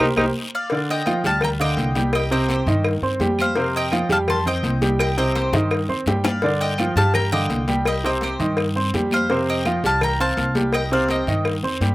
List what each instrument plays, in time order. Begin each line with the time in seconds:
0.00 upright bass C2, grand piano G4 A#4 C5
0.17 upright bass C2, trombone D#4, grand piano G4 A#4 C5, cowbell, high conga, long guiro, claves
0.55 mandolin D5 F5
0.70 grand piano D3 D4 D5, cowbell, high conga, long guiro
0.89 mandolin D#5 G5, high conga
1.06 grand piano F3 F4 F5, cowbell, high conga, short guiro, claves
1.24 upright bass D2, grand piano G3 G4 G5, mandolin F5 A5, high conga, short guiro
1.41 mandolin G5 A#5, cowbell, high conga, low conga, long guiro, claves
1.60 grand piano D3 F5 D6, mandolin D#5 G5, high conga
1.77 upright bass C2, cowbell, high conga, short guiro
1.95 grand piano G3 G4 G5, cowbell, high conga, short guiro
2.13 mandolin D#5 G5, cowbell, long guiro, claves
2.31 grand piano C3 C4 C5, mandolin D#5 G5
2.48 mandolin G4 C5, cowbell, high conga, short guiro
2.66 upright bass G2, grand piano D#3 D#4 D#5, high conga, short guiro
2.84 cowbell, high conga, long guiro, claves
3.02 upright bass G2, grand piano C4 C5 C6, high conga
3.20 upright bass F2, grand piano G3 G4 G5, cowbell, high conga, short guiro
3.39 mandolin C5 F5, high conga, short guiro, claves
3.56 grand piano C3 C4 C5, cowbell, high conga, long guiro
3.75 mandolin D#5 G5, high conga
3.92 grand piano F3 F4 F5, cowbell, high conga, short guiro, claves
4.09 upright bass F2, grand piano G3 G4 G5, mandolin F5 A5, high conga, short guiro
4.28 mandolin A5 C6, cowbell, high conga, low conga, long guiro, claves
4.46 grand piano C4 C5 C6, mandolin D#5 G5, high conga, low conga
4.63 upright bass C2, cowbell, high conga, short guiro
4.81 grand piano G3 G4 G5, cowbell, high conga, short guiro
4.99 mandolin D#5 G5, cowbell, long guiro, claves
5.18 grand piano C3 C4 C5, mandolin D#5 G5, high conga
5.35 mandolin G4 C5, cowbell, high conga, short guiro
5.53 upright bass G2, grand piano D#3 D#4 D#5, high bongo, high conga, short guiro
5.71 cowbell, high conga, long guiro, claves
5.88 upright bass F2, grand piano C4 C5 C6, high conga
6.06 upright bass G2, grand piano G3 G4 G5, cowbell, low bongo, high conga, short guiro
6.24 mandolin D5 F5, low bongo, high conga, short guiro, claves
6.42 grand piano D3 D4 D5, cowbell, high conga, long guiro
6.61 mandolin D#5 G5, high conga
6.78 grand piano F3 F4 F5, cowbell, high conga, short guiro, claves
6.96 upright bass G2, grand piano G3 G4 G5, mandolin F5 A5, high conga, short guiro
7.14 mandolin G5 A#5, cowbell, high conga, low conga, long guiro, claves
7.32 grand piano D3 F5 D6, mandolin D#5 G5, high conga, low conga
7.49 upright bass C2, cowbell, high conga, short guiro
7.68 grand piano G3 G4 G5, cowbell, high conga, short guiro
7.85 mandolin D#5 G5, cowbell, high conga, long guiro, claves
8.04 grand piano C3 C4 C5, mandolin D#5 G5, high conga
8.21 mandolin G4 C5, cowbell, high conga, short guiro
8.40 upright bass G2, grand piano D#3 D#4 D#5, high conga, short guiro
8.57 cowbell, high conga, long guiro, claves
8.76 grand piano C4 C5 C6, high conga
8.94 upright bass F2, grand piano G3 G4 G5, cowbell, high conga, short guiro
9.11 mandolin C5 F5, high conga, short guiro, claves
9.30 grand piano C3 C4 C5, cowbell, high conga, long guiro
9.48 mandolin D#5 G5, high conga
9.65 grand piano F3 F4 F5, cowbell, high conga, short guiro, claves
9.84 upright bass C2, grand piano G3 G4 G5, mandolin F5 A5, high conga, short guiro
10.01 mandolin G5 A#5, cowbell, high conga, low conga, long guiro, claves
10.20 grand piano C4 C5 C6, mandolin F5 A5, high conga
10.37 upright bass C2, cowbell, high conga, short guiro
10.55 grand piano G3 G4 G5, cowbell, high conga, short guiro
10.73 mandolin D#5 G5, cowbell, high conga, long guiro, claves
10.91 grand piano C3 C4 C5, mandolin D5 F5, high conga
11.08 mandolin D#5 G5, cowbell, high conga, short guiro
11.27 upright bass G2, grand piano D#3 D#4 D#5, high conga, short guiro
11.45 cowbell, high conga, long guiro, claves
11.63 upright bass F2, grand piano C4 C5 C6, high conga
11.81 upright bass G2, grand piano G3 G4 G5, cowbell, high conga, short guiro